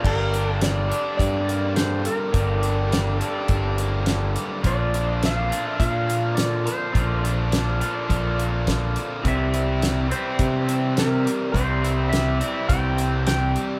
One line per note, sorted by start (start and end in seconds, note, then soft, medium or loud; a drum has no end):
0.02 0.91 G1 medium
0.02 0.91 G2 medium
0.02 1.47 G2 medium
0.02 0.88 D3 medium
0.02 0.89 G3 medium
0.02 0.90 A#3 medium
0.02 0.88 D4 medium
0.02 0.88 G4 medium
0.02 kick medium
0.02 crash medium
0.07 0.49 A#4 medium
0.32 0.90 D4 medium
0.32 closed hi-hat medium
0.49 0.63 A4 medium
0.61 1.16 G3 medium
0.61 1.16 D5 medium
0.61 snare medium
0.61 closed hi-hat medium
0.89 2.30 G2 medium
0.89 2.31 D3 medium
0.89 2.32 G3 medium
0.89 2.33 A#3 medium
0.89 2.33 D4 medium
0.89 2.61 D4 medium
0.89 2.32 G4 medium
0.89 closed hi-hat medium
1.17 2.06 G2 medium
1.17 2.03 G3 medium
1.17 1.77 D5 medium
1.17 kick medium
1.17 closed hi-hat medium
1.47 3.79 A#3 medium
1.47 closed hi-hat medium
1.76 3.20 D3 medium
1.76 2.06 C5 medium
1.76 snare medium
1.76 closed hi-hat medium
2.04 2.89 G3 medium
2.04 3.14 A#4 medium
2.04 closed hi-hat medium
2.31 3.21 G1 medium
2.31 3.17 G2 medium
2.31 3.77 G2 medium
2.31 3.18 D3 medium
2.31 3.18 G3 medium
2.31 3.19 A#3 medium
2.31 3.18 D4 medium
2.31 3.17 G4 medium
2.31 kick medium
2.31 closed hi-hat medium
2.61 3.20 D4 medium
2.61 closed hi-hat medium
2.90 3.48 G3 medium
2.90 snare loud
2.90 closed hi-hat medium
3.14 4.61 G4 medium
3.14 3.74 A4 medium
3.19 4.62 G2 medium
3.19 4.61 D3 medium
3.19 4.62 G3 medium
3.19 4.62 A#3 medium
3.19 4.63 D4 medium
3.19 4.94 D4 medium
3.19 closed hi-hat soft
3.48 4.36 G1 medium
3.48 4.35 G3 medium
3.48 kick medium
3.48 closed hi-hat medium
3.78 6.07 A#3 medium
3.78 closed hi-hat medium
4.06 4.64 D3 medium
4.06 snare medium
4.06 closed hi-hat medium
4.36 4.65 G3 medium
4.36 closed hi-hat medium
4.62 5.51 A#1 medium
4.62 5.51 A#2 medium
4.62 6.09 A#2 medium
4.62 5.48 D3 medium
4.62 5.50 A#3 medium
4.62 5.50 D4 medium
4.62 5.48 F4 medium
4.62 kick medium
4.62 closed hi-hat medium
4.67 5.25 D5 medium
4.94 5.48 D4 medium
4.94 closed hi-hat medium
5.21 5.78 F3 medium
5.21 5.66 F5 medium
5.21 snare medium
5.21 closed hi-hat medium
5.49 6.91 A#2 medium
5.49 6.92 D3 medium
5.49 6.93 A#3 medium
5.49 6.94 D4 medium
5.49 6.92 D4 medium
5.49 6.92 F4 medium
5.49 closed hi-hat medium
5.66 5.78 E5 medium
5.79 6.67 A#2 medium
5.79 6.64 F3 medium
5.79 6.39 F5 medium
5.79 kick loud
5.79 closed hi-hat medium
6.07 7.51 A#3 medium
6.07 closed hi-hat medium
6.35 7.80 D3 medium
6.35 6.65 D5 medium
6.35 snare medium
6.35 closed hi-hat medium
6.65 7.51 F3 medium
6.65 8.34 C5 medium
6.65 closed hi-hat medium
6.92 7.82 A#1 medium
6.92 7.78 A#2 medium
6.92 8.38 A#2 medium
6.92 7.78 D3 medium
6.92 7.79 A#3 medium
6.92 7.79 D4 medium
6.92 7.79 F4 loud
6.92 kick medium
6.92 closed hi-hat medium
7.24 7.79 D4 medium
7.24 closed hi-hat medium
7.52 8.08 F3 medium
7.52 snare medium
7.52 closed hi-hat medium
7.80 9.21 A#2 medium
7.80 9.22 D3 medium
7.80 9.23 A#3 medium
7.80 9.23 D4 medium
7.80 9.24 D4 medium
7.80 9.22 F4 medium
7.80 closed hi-hat medium
8.09 8.96 A#1 medium
8.09 8.96 F3 medium
8.09 kick loud
8.09 closed hi-hat medium
8.38 9.24 A#3 medium
8.38 closed hi-hat medium
8.67 9.24 D3 medium
8.67 kick medium
8.67 snare medium
8.67 closed hi-hat medium
8.96 9.25 F3 medium
8.96 closed hi-hat medium
9.22 10.11 C2 medium
9.22 10.09 C3 medium
9.22 10.09 E3 medium
9.22 10.09 G3 medium
9.22 10.08 C4 medium
9.22 10.07 E4 medium
9.22 kick loud
9.22 closed hi-hat medium
9.26 10.69 C3 medium
9.26 10.15 E5 medium
9.54 10.11 E4 medium
9.54 closed hi-hat medium
9.82 10.39 G3 medium
9.82 snare medium
9.82 closed hi-hat medium
10.08 11.52 C3 medium
10.08 11.52 E3 medium
10.08 11.52 G3 medium
10.08 11.54 C4 medium
10.08 11.51 E4 medium
10.08 10.99 C5 medium
10.08 closed hi-hat soft
10.12 11.55 E4 medium
10.39 11.26 C3 medium
10.39 11.24 G3 medium
10.39 kick medium
10.39 closed hi-hat medium
10.68 12.97 C4 medium
10.68 closed hi-hat medium
10.97 11.52 C3 medium
10.97 11.52 A#4 medium
10.97 snare loud
10.97 closed hi-hat medium
11.25 12.10 G3 medium
11.25 closed hi-hat medium
11.52 12.41 C2 loud
11.52 12.38 C3 medium
11.52 12.97 C3 medium
11.52 12.38 E3 medium
11.52 12.38 G3 medium
11.52 12.40 C4 medium
11.52 12.39 E4 medium
11.52 12.12 C5 medium
11.52 kick medium
11.52 closed hi-hat medium
11.84 12.39 E4 medium
11.84 closed hi-hat medium
12.09 12.69 G3 medium
12.09 12.70 E5 medium
12.09 closed hi-hat medium
12.14 snare medium
12.40 13.79 C3 medium
12.40 13.79 E3 medium
12.40 13.79 G3 medium
12.40 13.79 C4 medium
12.40 13.79 E4 medium
12.40 closed hi-hat medium
12.69 13.56 C2 loud
12.69 13.54 G3 medium
12.69 13.26 G5 medium
12.69 kick loud
12.69 closed hi-hat medium
12.97 13.79 C4 medium
12.97 closed hi-hat medium
13.27 13.79 C3 medium
13.27 13.67 G5 medium
13.27 snare medium
13.27 closed hi-hat medium
13.55 13.79 G3 medium
13.55 closed hi-hat medium